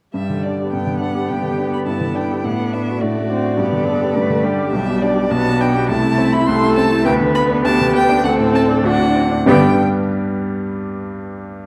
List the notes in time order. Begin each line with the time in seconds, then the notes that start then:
0.14 G2 G3 E5
0.30 D3
0.43 D4 D5
0.59 G4
0.72 G2 B3 G5
0.87 D3
1.00 D4 F#5
1.15 G4
1.28 G2 G4 G5
1.43 D3
1.58 D4
1.72 G4 B5
1.86 G2 E4 A5
2.01 D3
2.15 D4 G5
2.30 G4
2.44 A2 B3 D4 F#5
2.58 A3
2.73 D4 E5
2.88 F#4
3.01 A2 A3 F#4 D5
3.17 A3
3.30 C4 D4
3.44 F#4
3.58 G2 B3 G4
3.72 D3
3.86 D4 A4
4.01 G4
4.15 G2 A3 B4
4.30 D3
4.43 G3 D4 G4
4.58 G4
4.72 B1 G3 E5
4.87 B2
5.02 D4 D5
5.16 G4
5.30 B1 B3 F#4 A5
5.46 B2
5.60 D4 G5
5.74 G4
5.89 C2 A3 E4 A5
6.03 C3
6.18 C4
6.33 E4 B5
6.46 C2 A3 A4 C6
6.63 C3
6.76 C4 A5
6.92 E4
7.05 D2 B3 B4 G5
7.20 D3
7.35 B3 B5
7.51 D4
7.64 D2 G4 A5
7.81 D3
7.95 B3 G5
8.09 D4
8.24 D2 C4 A4 F#5
8.39 A2
8.53 C4 A5
8.68 D4
8.83 D2 D4 F#4
8.87 F#5
8.99 A2
9.16 C4
9.32 D4
9.46 G2 D3 G3 B3 D4 G4 D5 G5